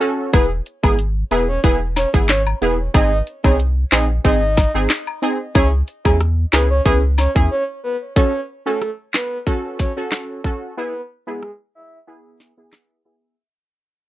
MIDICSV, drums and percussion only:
0, 0, Header, 1, 2, 480
1, 0, Start_track
1, 0, Key_signature, 3, "minor"
1, 0, Tempo, 652174
1, 247, Time_signature, 4, 2, 24, 8
1, 10367, End_track
2, 0, Start_track
2, 0, Title_t, "Drums"
2, 8, Note_on_c, 9, 42, 59
2, 9, Note_on_c, 9, 69, 73
2, 82, Note_off_c, 9, 42, 0
2, 82, Note_off_c, 9, 69, 0
2, 245, Note_on_c, 9, 76, 77
2, 247, Note_on_c, 9, 36, 121
2, 247, Note_on_c, 9, 42, 67
2, 319, Note_off_c, 9, 76, 0
2, 321, Note_off_c, 9, 36, 0
2, 321, Note_off_c, 9, 42, 0
2, 483, Note_on_c, 9, 69, 73
2, 487, Note_on_c, 9, 42, 50
2, 557, Note_off_c, 9, 69, 0
2, 561, Note_off_c, 9, 42, 0
2, 615, Note_on_c, 9, 36, 91
2, 616, Note_on_c, 9, 76, 84
2, 688, Note_off_c, 9, 36, 0
2, 690, Note_off_c, 9, 76, 0
2, 727, Note_on_c, 9, 42, 71
2, 801, Note_off_c, 9, 42, 0
2, 966, Note_on_c, 9, 42, 52
2, 966, Note_on_c, 9, 69, 65
2, 966, Note_on_c, 9, 76, 66
2, 1039, Note_off_c, 9, 42, 0
2, 1040, Note_off_c, 9, 69, 0
2, 1040, Note_off_c, 9, 76, 0
2, 1206, Note_on_c, 9, 36, 93
2, 1206, Note_on_c, 9, 42, 81
2, 1279, Note_off_c, 9, 36, 0
2, 1280, Note_off_c, 9, 42, 0
2, 1445, Note_on_c, 9, 69, 78
2, 1445, Note_on_c, 9, 76, 78
2, 1447, Note_on_c, 9, 38, 66
2, 1448, Note_on_c, 9, 42, 57
2, 1518, Note_off_c, 9, 69, 0
2, 1518, Note_off_c, 9, 76, 0
2, 1521, Note_off_c, 9, 38, 0
2, 1521, Note_off_c, 9, 42, 0
2, 1575, Note_on_c, 9, 36, 98
2, 1648, Note_off_c, 9, 36, 0
2, 1686, Note_on_c, 9, 39, 95
2, 1687, Note_on_c, 9, 38, 120
2, 1688, Note_on_c, 9, 42, 79
2, 1759, Note_off_c, 9, 39, 0
2, 1761, Note_off_c, 9, 38, 0
2, 1762, Note_off_c, 9, 42, 0
2, 1815, Note_on_c, 9, 76, 82
2, 1889, Note_off_c, 9, 76, 0
2, 1928, Note_on_c, 9, 42, 59
2, 1928, Note_on_c, 9, 69, 75
2, 2001, Note_off_c, 9, 42, 0
2, 2002, Note_off_c, 9, 69, 0
2, 2165, Note_on_c, 9, 76, 72
2, 2167, Note_on_c, 9, 36, 121
2, 2167, Note_on_c, 9, 42, 67
2, 2239, Note_off_c, 9, 76, 0
2, 2241, Note_off_c, 9, 36, 0
2, 2241, Note_off_c, 9, 42, 0
2, 2404, Note_on_c, 9, 69, 73
2, 2407, Note_on_c, 9, 42, 49
2, 2478, Note_off_c, 9, 69, 0
2, 2480, Note_off_c, 9, 42, 0
2, 2535, Note_on_c, 9, 36, 89
2, 2537, Note_on_c, 9, 76, 80
2, 2608, Note_off_c, 9, 36, 0
2, 2610, Note_off_c, 9, 76, 0
2, 2646, Note_on_c, 9, 42, 71
2, 2720, Note_off_c, 9, 42, 0
2, 2884, Note_on_c, 9, 42, 55
2, 2885, Note_on_c, 9, 39, 103
2, 2887, Note_on_c, 9, 38, 123
2, 2887, Note_on_c, 9, 69, 64
2, 2887, Note_on_c, 9, 76, 67
2, 2958, Note_off_c, 9, 42, 0
2, 2959, Note_off_c, 9, 39, 0
2, 2960, Note_off_c, 9, 69, 0
2, 2960, Note_off_c, 9, 76, 0
2, 2961, Note_off_c, 9, 38, 0
2, 3125, Note_on_c, 9, 36, 95
2, 3125, Note_on_c, 9, 42, 80
2, 3199, Note_off_c, 9, 36, 0
2, 3199, Note_off_c, 9, 42, 0
2, 3364, Note_on_c, 9, 69, 79
2, 3364, Note_on_c, 9, 76, 74
2, 3366, Note_on_c, 9, 38, 64
2, 3367, Note_on_c, 9, 36, 102
2, 3367, Note_on_c, 9, 42, 58
2, 3438, Note_off_c, 9, 69, 0
2, 3438, Note_off_c, 9, 76, 0
2, 3440, Note_off_c, 9, 38, 0
2, 3441, Note_off_c, 9, 36, 0
2, 3441, Note_off_c, 9, 42, 0
2, 3605, Note_on_c, 9, 39, 97
2, 3607, Note_on_c, 9, 38, 123
2, 3607, Note_on_c, 9, 42, 80
2, 3679, Note_off_c, 9, 39, 0
2, 3680, Note_off_c, 9, 38, 0
2, 3681, Note_off_c, 9, 42, 0
2, 3734, Note_on_c, 9, 76, 78
2, 3807, Note_off_c, 9, 76, 0
2, 3847, Note_on_c, 9, 42, 59
2, 3847, Note_on_c, 9, 69, 73
2, 3921, Note_off_c, 9, 42, 0
2, 3921, Note_off_c, 9, 69, 0
2, 4084, Note_on_c, 9, 76, 77
2, 4086, Note_on_c, 9, 42, 66
2, 4087, Note_on_c, 9, 36, 124
2, 4157, Note_off_c, 9, 76, 0
2, 4160, Note_off_c, 9, 36, 0
2, 4160, Note_off_c, 9, 42, 0
2, 4321, Note_on_c, 9, 69, 75
2, 4327, Note_on_c, 9, 42, 49
2, 4395, Note_off_c, 9, 69, 0
2, 4400, Note_off_c, 9, 42, 0
2, 4455, Note_on_c, 9, 36, 90
2, 4455, Note_on_c, 9, 76, 83
2, 4528, Note_off_c, 9, 36, 0
2, 4529, Note_off_c, 9, 76, 0
2, 4567, Note_on_c, 9, 37, 70
2, 4567, Note_on_c, 9, 42, 70
2, 4640, Note_off_c, 9, 42, 0
2, 4641, Note_off_c, 9, 37, 0
2, 4805, Note_on_c, 9, 69, 69
2, 4805, Note_on_c, 9, 76, 69
2, 4806, Note_on_c, 9, 42, 53
2, 4807, Note_on_c, 9, 39, 101
2, 4808, Note_on_c, 9, 38, 119
2, 4879, Note_off_c, 9, 69, 0
2, 4879, Note_off_c, 9, 76, 0
2, 4880, Note_off_c, 9, 39, 0
2, 4880, Note_off_c, 9, 42, 0
2, 4882, Note_off_c, 9, 38, 0
2, 5046, Note_on_c, 9, 36, 100
2, 5046, Note_on_c, 9, 42, 82
2, 5119, Note_off_c, 9, 36, 0
2, 5120, Note_off_c, 9, 42, 0
2, 5284, Note_on_c, 9, 69, 77
2, 5284, Note_on_c, 9, 76, 77
2, 5288, Note_on_c, 9, 38, 65
2, 5289, Note_on_c, 9, 42, 57
2, 5358, Note_off_c, 9, 69, 0
2, 5358, Note_off_c, 9, 76, 0
2, 5361, Note_off_c, 9, 38, 0
2, 5362, Note_off_c, 9, 42, 0
2, 5415, Note_on_c, 9, 36, 102
2, 5489, Note_off_c, 9, 36, 0
2, 6008, Note_on_c, 9, 36, 115
2, 6008, Note_on_c, 9, 42, 66
2, 6081, Note_off_c, 9, 42, 0
2, 6082, Note_off_c, 9, 36, 0
2, 6488, Note_on_c, 9, 42, 69
2, 6489, Note_on_c, 9, 37, 63
2, 6562, Note_off_c, 9, 42, 0
2, 6563, Note_off_c, 9, 37, 0
2, 6728, Note_on_c, 9, 39, 96
2, 6730, Note_on_c, 9, 38, 118
2, 6802, Note_off_c, 9, 39, 0
2, 6803, Note_off_c, 9, 38, 0
2, 6967, Note_on_c, 9, 36, 92
2, 6967, Note_on_c, 9, 42, 77
2, 7041, Note_off_c, 9, 36, 0
2, 7041, Note_off_c, 9, 42, 0
2, 7207, Note_on_c, 9, 38, 59
2, 7209, Note_on_c, 9, 36, 95
2, 7281, Note_off_c, 9, 38, 0
2, 7283, Note_off_c, 9, 36, 0
2, 7446, Note_on_c, 9, 39, 94
2, 7448, Note_on_c, 9, 37, 92
2, 7448, Note_on_c, 9, 38, 115
2, 7448, Note_on_c, 9, 42, 75
2, 7520, Note_off_c, 9, 39, 0
2, 7521, Note_off_c, 9, 37, 0
2, 7521, Note_off_c, 9, 38, 0
2, 7522, Note_off_c, 9, 42, 0
2, 7687, Note_on_c, 9, 36, 98
2, 7760, Note_off_c, 9, 36, 0
2, 8409, Note_on_c, 9, 37, 63
2, 8483, Note_off_c, 9, 37, 0
2, 9128, Note_on_c, 9, 38, 60
2, 9201, Note_off_c, 9, 38, 0
2, 9366, Note_on_c, 9, 39, 88
2, 9368, Note_on_c, 9, 37, 89
2, 9368, Note_on_c, 9, 38, 108
2, 9440, Note_off_c, 9, 39, 0
2, 9441, Note_off_c, 9, 37, 0
2, 9441, Note_off_c, 9, 38, 0
2, 10367, End_track
0, 0, End_of_file